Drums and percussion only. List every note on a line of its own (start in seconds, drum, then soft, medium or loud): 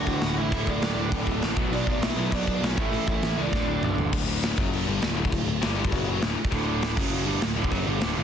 0.07 kick medium
0.21 snare loud
0.21 crash medium
0.52 kick loud
0.52 crash medium
0.67 kick medium
0.82 snare loud
0.82 crash medium
1.12 kick loud
1.12 crash medium
1.27 kick medium
1.42 snare loud
1.42 crash medium
1.57 kick loud
1.73 crash medium
1.87 kick medium
2.02 snare loud
2.02 crash medium
2.32 kick loud
2.32 crash medium
2.47 kick medium
2.63 snare loud
2.63 crash medium
2.78 kick loud
2.94 crash medium
3.08 kick loud
3.22 snare loud
3.22 crash medium
3.53 kick loud
3.53 snare medium
3.83 mid tom medium
3.98 floor tom loud
4.13 kick loud
4.13 crash loud
4.13 crash medium
4.43 snare loud
4.43 crash medium
4.58 kick loud
4.74 crash medium
5.02 snare loud
5.02 crash medium
5.25 kick medium
5.32 kick loud
5.32 crash medium
5.62 snare loud
5.62 crash medium
5.85 kick medium
5.92 kick loud
5.92 crash medium
6.22 snare loud
6.22 crash medium
6.45 kick medium
6.52 kick medium
6.52 crash medium
6.82 snare loud
6.82 crash medium
6.97 kick loud
6.97 crash loud
7.12 crash medium
7.41 snare loud
7.41 crash medium
7.64 kick medium
7.71 kick medium
7.71 crash medium
8.01 snare loud
8.01 crash medium